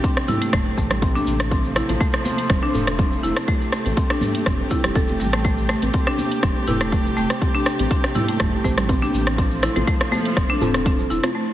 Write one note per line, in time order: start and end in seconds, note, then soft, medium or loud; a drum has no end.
0.00 5.41 C3 medium
0.00 9.34 A3 medium
0.00 0.11 C4 medium
0.00 1.48 G4 medium
0.00 kick loud
0.00 closed hi-hat soft
0.00 shaker medium
0.17 cross-stick medium
0.17 shaker soft
0.28 0.40 E4 medium
0.28 mid tom medium
0.28 high conga medium
0.28 low conga medium
0.28 shaker medium
0.42 0.52 A3 medium
0.42 closed hi-hat medium
0.42 shaker soft
0.53 0.69 E1 medium
0.53 0.66 A3 loud
0.53 kick loud
0.53 cross-stick loud
0.53 closed hi-hat soft
0.53 mid tom medium
0.53 low conga medium
0.53 shaker soft
0.78 1.20 A1 medium
0.78 0.90 A3 medium
0.78 1.00 C4 medium
0.78 1.00 G4 medium
0.78 1.00 C5 medium
0.78 kick medium
0.78 shaker medium
0.91 cross-stick medium
0.91 closed hi-hat medium
0.91 low conga loud
0.91 shaker soft
1.02 1.14 C4 medium
1.02 1.50 C4 medium
1.02 1.50 G4 medium
1.02 1.50 B4 medium
1.02 kick loud
1.02 closed hi-hat soft
1.02 shaker medium
1.15 1.26 D4 loud
1.15 high conga loud
1.15 shaker soft
1.27 1.81 A1 medium
1.27 shaker loud
1.40 cross-stick medium
1.40 closed hi-hat medium
1.40 shaker soft
1.51 3.46 F3 medium
1.51 1.58 C4 medium
1.51 kick loud
1.51 closed hi-hat soft
1.51 shaker medium
1.64 shaker soft
1.76 1.88 E4 medium
1.76 cross-stick medium
1.76 shaker loud
1.89 1.96 A1 loud
1.89 1.99 A3 medium
1.89 1.95 C4 medium
1.89 1.95 F4 medium
1.89 1.95 A4 medium
1.89 closed hi-hat medium
1.89 high conga medium
1.89 shaker soft
2.00 2.13 A3 loud
2.00 kick loud
2.00 closed hi-hat soft
2.00 shaker medium
2.14 cross-stick medium
2.14 shaker soft
2.25 2.38 A3 medium
2.25 high conga loud
2.25 shaker loud
2.38 closed hi-hat medium
2.38 shaker soft
2.50 2.58 E1 medium
2.50 2.62 C4 medium
2.50 kick loud
2.50 cross-stick medium
2.50 closed hi-hat soft
2.50 low conga loud
2.50 shaker medium
2.63 2.73 D4 loud
2.74 3.17 E1 loud
2.74 3.34 C4 loud
2.74 3.34 F4 medium
2.74 3.34 A4 loud
2.74 mid tom medium
2.74 shaker medium
2.87 cross-stick medium
2.87 closed hi-hat medium
2.87 shaker soft
2.99 3.06 C4 medium
2.99 kick loud
2.99 closed hi-hat soft
2.99 low conga loud
2.99 shaker medium
3.12 shaker soft
3.23 3.32 E1 medium
3.23 3.35 E4 medium
3.23 shaker medium
3.36 3.47 A3 medium
3.36 3.42 C4 medium
3.36 3.42 F4 medium
3.36 cross-stick loud
3.36 closed hi-hat medium
3.36 shaker soft
3.48 3.60 A3 loud
3.48 9.34 G4 medium
3.48 kick loud
3.48 closed hi-hat soft
3.48 shaker medium
3.62 shaker soft
3.72 3.85 A3 medium
3.72 cross-stick medium
3.72 shaker medium
3.86 3.93 A1 loud
3.86 3.95 C4 medium
3.86 3.95 F4 medium
3.86 3.95 C5 loud
3.86 closed hi-hat medium
3.86 high conga medium
3.86 shaker soft
3.97 4.09 C4 medium
3.97 kick loud
3.97 closed hi-hat soft
3.97 shaker medium
4.10 4.21 D4 loud
4.10 cross-stick medium
4.10 high conga medium
4.10 shaker soft
4.21 mid tom medium
4.21 high conga loud
4.21 low conga medium
4.21 shaker loud
4.35 closed hi-hat medium
4.35 shaker soft
4.46 4.62 E1 medium
4.46 4.53 C4 medium
4.46 kick loud
4.46 cross-stick medium
4.46 closed hi-hat soft
4.46 mid tom medium
4.46 low conga medium
4.46 shaker medium
4.70 4.93 C4 medium
4.70 4.83 E4 medium
4.70 4.93 F4 medium
4.70 4.93 C5 medium
4.70 kick medium
4.70 shaker loud
4.84 4.91 E1 medium
4.84 4.94 G4 medium
4.84 cross-stick medium
4.84 closed hi-hat medium
4.84 low conga loud
4.84 shaker soft
4.95 5.22 E1 medium
4.95 5.43 C4 medium
4.95 5.43 F4 medium
4.95 5.43 A4 loud
4.95 5.07 A4 loud
4.95 kick loud
4.95 closed hi-hat soft
4.95 shaker medium
5.08 high conga medium
5.08 shaker soft
5.20 5.75 A1 loud
5.20 5.32 G3 medium
5.20 shaker medium
5.33 5.44 A3 medium
5.33 cross-stick medium
5.33 closed hi-hat medium
5.33 shaker soft
5.44 11.31 C3 medium
5.44 5.57 A3 loud
5.44 kick loud
5.44 closed hi-hat soft
5.44 shaker medium
5.58 shaker soft
5.69 5.82 A3 loud
5.69 cross-stick medium
5.69 shaker medium
5.82 5.90 A1 loud
5.82 5.88 C4 medium
5.82 5.88 G4 medium
5.82 5.88 B4 medium
5.82 closed hi-hat medium
5.82 high conga medium
5.82 shaker soft
5.93 6.06 C4 medium
5.93 kick loud
5.93 closed hi-hat soft
5.93 shaker medium
6.07 6.17 D4 loud
6.07 cross-stick medium
6.07 shaker soft
6.18 high conga loud
6.18 shaker loud
6.32 closed hi-hat medium
6.32 shaker soft
6.43 6.51 E1 medium
6.43 6.50 C4 medium
6.43 kick loud
6.43 cross-stick medium
6.43 closed hi-hat soft
6.43 low conga medium
6.43 shaker medium
6.67 7.10 E1 loud
6.67 7.27 C4 loud
6.67 6.80 E4 medium
6.67 7.27 G4 medium
6.67 7.27 B4 loud
6.67 mid tom medium
6.67 shaker medium
6.81 6.91 A3 medium
6.81 cross-stick medium
6.81 closed hi-hat medium
6.81 shaker soft
6.92 7.05 A3 loud
6.92 kick loud
6.92 closed hi-hat soft
6.92 low conga medium
6.92 shaker medium
7.06 shaker soft
7.17 7.25 E1 medium
7.17 7.29 A3 loud
7.17 shaker medium
7.30 7.36 C4 medium
7.30 7.36 G4 medium
7.30 7.36 C5 medium
7.30 cross-stick medium
7.30 closed hi-hat medium
7.30 shaker soft
7.41 7.53 C4 medium
7.41 kick loud
7.41 closed hi-hat soft
7.41 shaker soft
7.55 7.65 D4 loud
7.55 shaker soft
7.66 cross-stick medium
7.66 shaker medium
7.79 7.87 A1 loud
7.79 7.88 C4 medium
7.79 7.88 G4 medium
7.79 7.88 C5 loud
7.79 closed hi-hat medium
7.79 high conga medium
7.79 shaker soft
7.91 7.98 C4 medium
7.91 kick loud
7.91 closed hi-hat soft
7.91 shaker soft
8.03 cross-stick medium
8.03 shaker soft
8.15 8.27 E4 medium
8.15 mid tom medium
8.15 high conga medium
8.15 low conga medium
8.15 shaker medium
8.28 8.39 A3 medium
8.28 closed hi-hat medium
8.28 shaker soft
8.39 8.56 E1 medium
8.39 8.52 A3 loud
8.39 kick loud
8.39 cross-stick medium
8.39 closed hi-hat soft
8.39 mid tom medium
8.39 low conga medium
8.39 shaker soft
8.64 9.07 A1 medium
8.64 8.77 A3 loud
8.64 8.86 C4 medium
8.64 8.86 G4 medium
8.64 8.86 C5 medium
8.64 kick medium
8.64 shaker medium
8.78 cross-stick medium
8.78 closed hi-hat medium
8.78 low conga loud
8.78 shaker soft
8.89 9.01 C4 medium
8.89 9.37 C4 medium
8.89 9.37 G4 medium
8.89 9.37 B4 loud
8.89 kick loud
8.89 closed hi-hat soft
8.89 shaker medium
9.02 9.13 D4 loud
9.02 high conga medium
9.02 shaker soft
9.14 9.68 A1 loud
9.14 shaker medium
9.27 cross-stick medium
9.27 closed hi-hat medium
9.27 shaker soft
9.38 11.33 F3 medium
9.38 11.33 A3 medium
9.38 9.45 C4 medium
9.38 kick loud
9.38 closed hi-hat soft
9.38 shaker medium
9.51 shaker soft
9.63 9.75 E4 medium
9.63 cross-stick medium
9.63 shaker medium
9.76 9.83 A1 loud
9.76 9.86 A3 medium
9.76 9.82 C4 medium
9.76 9.82 F4 medium
9.76 9.82 A4 medium
9.76 closed hi-hat medium
9.76 high conga medium
9.76 shaker soft
9.87 10.00 A3 loud
9.87 kick loud
9.87 closed hi-hat soft
9.87 shaker soft
10.00 cross-stick medium
10.00 shaker soft
10.12 10.25 A3 loud
10.12 high conga medium
10.12 shaker medium
10.25 closed hi-hat medium
10.25 shaker soft
10.37 10.45 E1 medium
10.37 10.48 C4 medium
10.37 kick loud
10.37 cross-stick medium
10.37 closed hi-hat soft
10.37 low conga medium
10.37 shaker soft
10.50 10.60 D4 loud
10.61 11.04 E1 loud
10.61 11.20 C4 loud
10.61 11.20 F4 medium
10.61 11.20 A4 loud
10.61 mid tom medium
10.61 shaker medium
10.74 cross-stick medium
10.74 closed hi-hat medium
10.74 shaker soft
10.85 10.93 C4 medium
10.85 kick loud
10.85 closed hi-hat soft
10.85 low conga medium
10.85 shaker soft
10.99 shaker soft
11.10 11.19 E1 medium
11.10 11.22 E4 medium
11.10 shaker medium
11.23 11.34 A3 medium
11.23 11.29 C4 medium
11.23 11.29 F4 medium
11.23 11.29 C5 medium
11.23 cross-stick medium
11.23 closed hi-hat medium
11.23 shaker soft
11.35 11.47 A3 loud